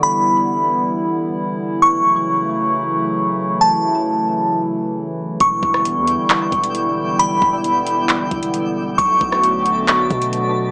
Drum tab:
HH |----------------|----------------|----------------|x---x-x-x-xxx---|
CP |----------------|----------------|----------------|--------x-------|
SD |----------------|----------------|----------------|---r------------|
BD |----------------|----------------|----------------|o-o-------o-----|

HH |x---x-x-x-xxx---|x---x-x-x-xxx---|
CP |--------x-------|--------x-------|
SD |----------------|---r------------|
BD |--o-------o-----|o-o-------o-----|